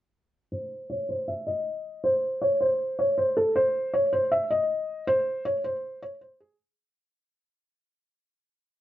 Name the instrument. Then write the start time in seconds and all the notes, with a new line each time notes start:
felt piano
0.52 C5
0.90 C#5
1.09 C5
1.28 E5
1.47 D#5
2.04 C5
2.42 C#5
2.61 C5
2.99 C#5
3.18 C5
3.37 A4
3.56 C5
3.94 C#5
4.13 C5
4.32 E5
4.50 D#5
5.07 C5
5.45 C#5
5.64 C5
6.02 C#5
6.21 C5
6.40 G#4